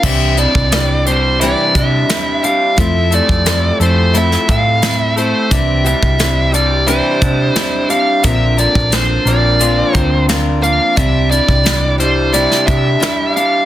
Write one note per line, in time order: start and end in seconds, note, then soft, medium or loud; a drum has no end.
0.03 0.45 C2 medium
0.03 0.37 C3 medium
0.03 1.75 C3 medium
0.03 0.38 E3 medium
0.03 0.38 G3 medium
0.03 0.38 C4 medium
0.03 0.38 D4 medium
0.03 0.36 G4 medium
0.03 0.39 E5 medium
0.03 kick medium
0.03 crash medium
0.37 0.71 E3 medium
0.37 0.70 G3 soft
0.37 0.72 C4 soft
0.37 0.73 D4 soft
0.37 0.72 G4 soft
0.37 1.07 D5 medium
0.37 closed hi-hat medium
0.55 1.53 C2 medium
0.55 kick medium
0.71 2.77 E3 medium
0.71 1.06 G3 medium
0.71 1.07 C4 soft
0.71 1.07 D4 medium
0.71 1.06 G4 medium
0.71 snare loud
0.71 closed hi-hat medium
1.06 2.42 G3 medium
1.06 1.42 C4 soft
1.06 1.42 D4 soft
1.06 1.41 G4 soft
1.06 1.40 C5 medium
1.06 closed hi-hat medium
1.10 1.41 G3 soft
1.40 1.75 C3 medium
1.40 1.76 E3 medium
1.40 1.76 G3 medium
1.40 1.76 C4 medium
1.40 1.75 D4 medium
1.40 2.09 E4 medium
1.40 1.74 G4 medium
1.40 1.76 D5 medium
1.40 closed hi-hat medium
1.75 2.03 C3 medium
1.75 2.08 G3 soft
1.75 2.09 C4 soft
1.75 2.78 D4 medium
1.75 2.09 G4 soft
1.75 2.44 E5 medium
1.75 kick medium
1.75 closed hi-hat medium
2.09 2.44 G3 soft
2.09 2.42 D4 medium
2.09 2.81 E4 medium
2.09 2.41 G4 medium
2.09 snare loud
2.09 closed hi-hat medium
2.43 2.78 G3 medium
2.43 2.77 G3 soft
2.43 2.77 C4 soft
2.43 2.77 D4 soft
2.43 2.77 G4 soft
2.43 2.79 F5 medium
2.43 closed hi-hat medium
2.76 3.19 F2 medium
2.76 3.11 F3 medium
2.76 3.44 F3 medium
2.76 3.12 A3 medium
2.76 3.12 C4 medium
2.76 3.11 E4 medium
2.76 3.09 A4 medium
2.76 3.14 E5 medium
2.76 kick loud
2.76 closed hi-hat medium
3.11 3.79 A3 medium
3.11 3.45 C4 soft
3.11 3.46 E4 soft
3.11 3.45 A4 medium
3.11 3.77 D5 medium
3.11 closed hi-hat medium
3.29 3.71 F2 medium
3.29 kick medium
3.45 5.17 F3 medium
3.45 3.80 A3 medium
3.45 3.80 C4 medium
3.45 3.80 E4 medium
3.45 3.79 A4 medium
3.45 snare loud
3.45 closed hi-hat medium
3.80 4.36 F2 medium
3.80 5.15 A3 medium
3.80 4.14 C4 soft
3.80 4.14 E4 soft
3.80 4.14 A4 soft
3.80 4.16 C5 medium
3.80 closed hi-hat medium
4.14 4.48 F3 medium
4.14 4.49 A3 medium
4.14 4.49 C4 medium
4.14 4.81 E4 medium
4.14 4.49 E4 medium
4.14 4.47 A4 medium
4.14 closed hi-hat medium
4.18 4.51 E5 loud
4.32 snare soft
4.48 5.32 A2 medium
4.48 7.21 C4 medium
4.48 4.82 C4 soft
4.48 4.82 A4 soft
4.48 4.95 F5 medium
4.48 kick medium
4.48 closed hi-hat medium
4.82 5.17 A3 medium
4.82 5.17 C4 medium
4.82 5.51 E4 medium
4.82 5.15 A4 medium
4.82 snare loud
4.82 closed hi-hat medium
4.95 5.14 E5 medium
5.16 5.51 A3 medium
5.16 5.51 C4 soft
5.16 5.51 E4 soft
5.16 5.51 A4 medium
5.16 5.53 C5 medium
5.16 closed hi-hat soft
5.50 5.93 C2 medium
5.50 7.21 C3 medium
5.50 5.85 C3 medium
5.50 5.85 E3 medium
5.50 5.86 G3 medium
5.50 5.85 C4 medium
5.50 5.85 D4 medium
5.50 5.83 G4 medium
5.50 5.86 E5 loud
5.50 kick medium
5.50 closed hi-hat medium
5.85 6.18 E3 medium
5.85 6.17 G3 soft
5.85 6.19 C4 soft
5.85 6.19 D4 soft
5.85 6.19 G4 medium
5.85 6.50 E5 medium
5.85 closed hi-hat medium
6.02 7.00 C2 medium
6.02 kick medium
6.19 7.90 E3 medium
6.19 6.53 G3 medium
6.19 6.53 C4 medium
6.19 6.52 D4 medium
6.19 6.51 G4 medium
6.19 snare loud
6.19 closed hi-hat medium
6.52 7.89 G3 medium
6.52 6.86 G3 soft
6.52 6.87 C4 soft
6.52 6.87 D4 soft
6.52 6.87 G4 soft
6.52 6.88 D5 medium
6.52 closed hi-hat medium
6.87 7.21 C3 medium
6.87 7.21 E3 medium
6.87 7.22 G3 medium
6.87 7.22 C4 medium
6.87 7.21 D4 medium
6.87 7.55 E4 medium
6.87 7.20 G4 medium
6.87 7.90 C5 medium
6.87 closed hi-hat medium
7.21 7.49 C3 medium
7.21 7.55 G3 soft
7.21 7.56 C4 soft
7.21 9.93 D4 medium
7.21 7.56 D4 soft
7.21 7.56 G4 medium
7.21 kick medium
7.21 closed hi-hat medium
7.56 7.90 G3 soft
7.56 7.89 C4 medium
7.56 7.88 D4 medium
7.56 8.24 E4 medium
7.56 7.88 G4 medium
7.56 snare loud
7.56 closed hi-hat medium
7.89 8.24 G3 medium
7.89 8.23 G3 soft
7.89 8.24 C4 soft
7.89 8.23 D4 medium
7.89 8.23 G4 medium
7.89 8.24 F5 medium
7.89 closed hi-hat medium
8.23 8.66 A#1 medium
8.23 8.58 A#2 medium
8.23 9.95 A#2 medium
8.23 8.58 D3 medium
8.23 8.58 F3 medium
8.23 8.57 C4 medium
8.23 8.57 D4 medium
8.23 8.56 A#4 medium
8.23 8.59 E5 medium
8.23 kick medium
8.23 closed hi-hat medium
8.57 8.92 D3 medium
8.57 8.89 F3 soft
8.57 8.91 C4 soft
8.57 8.91 D4 soft
8.57 8.92 A#4 soft
8.57 8.94 D5 medium
8.57 closed hi-hat medium
8.75 9.17 A#1 medium
8.75 kick medium
8.91 10.63 D3 medium
8.91 9.25 F3 medium
8.91 9.26 C4 medium
8.91 9.25 D4 medium
8.91 9.24 A#4 medium
8.91 9.28 C5 medium
8.91 snare loud
8.91 closed hi-hat medium
9.25 9.81 A#1 medium
9.25 9.59 F3 soft
9.25 10.61 A#3 medium
9.25 9.60 C4 soft
9.25 9.60 D4 soft
9.25 9.60 A#4 soft
9.25 9.96 D5 medium
9.25 closed hi-hat medium
9.59 9.94 A#2 medium
9.59 9.95 D3 medium
9.59 9.94 F3 medium
9.59 9.95 C4 medium
9.59 9.93 D4 medium
9.59 10.27 F4 medium
9.59 9.92 A#4 medium
9.59 closed hi-hat medium
9.93 10.78 D2 medium
9.93 10.27 F3 soft
9.93 12.67 C4 medium
9.93 10.28 C4 soft
9.93 10.29 D4 soft
9.93 10.28 A#4 medium
9.93 10.26 C5 medium
9.93 kick medium
9.93 closed hi-hat medium
10.28 10.63 F3 medium
10.28 10.62 C4 medium
10.28 10.62 D4 medium
10.28 10.97 F4 medium
10.28 10.60 A#4 medium
10.28 snare loud
10.28 closed hi-hat medium
10.62 10.96 F3 soft
10.62 10.97 A#3 medium
10.62 10.97 C4 soft
10.62 10.96 D4 soft
10.62 10.96 A#4 soft
10.62 10.95 F5 medium
10.62 closed hi-hat medium
10.96 11.39 C2 medium
10.96 12.67 C3 medium
10.96 11.31 C3 medium
10.96 11.31 G3 medium
10.96 11.31 D4 medium
10.96 11.30 E4 medium
10.96 11.28 G4 medium
10.96 11.30 E5 medium
10.96 kick loud
10.96 closed hi-hat medium
11.30 11.64 E3 medium
11.30 11.64 D4 soft
11.30 11.65 E4 soft
11.30 11.64 G4 soft
11.30 11.95 D5 medium
11.30 closed hi-hat medium
11.48 12.46 C2 medium
11.48 kick medium
11.64 13.65 E3 medium
11.64 11.98 G3 medium
11.64 11.99 D4 medium
11.64 11.98 E4 medium
11.64 11.97 G4 medium
11.64 snare loud
11.64 closed hi-hat medium
11.98 13.35 G3 medium
11.98 12.33 D4 soft
11.98 12.33 E4 soft
11.98 12.33 G4 soft
11.98 12.31 C5 medium
11.98 closed hi-hat medium
12.33 12.67 C3 medium
12.33 12.67 G3 medium
12.33 12.68 D4 medium
12.33 13.02 E4 medium
12.33 12.67 E4 medium
12.33 12.66 G4 medium
12.33 12.65 D5 medium
12.33 closed hi-hat medium
12.51 snare soft
12.67 12.95 C3 medium
12.67 13.65 D4 medium
12.67 13.01 E4 soft
12.67 13.01 G4 medium
12.67 13.36 E5 medium
12.67 kick medium
12.67 closed hi-hat medium
13.00 13.35 G3 medium
13.00 13.35 D4 medium
13.00 13.36 E4 medium
13.00 13.65 E4 medium
13.00 13.33 G4 medium
13.00 snare loud
13.00 closed hi-hat medium
13.34 13.65 G3 medium
13.34 13.65 D4 soft
13.34 13.65 G4 soft
13.34 13.65 F5 medium
13.34 closed hi-hat medium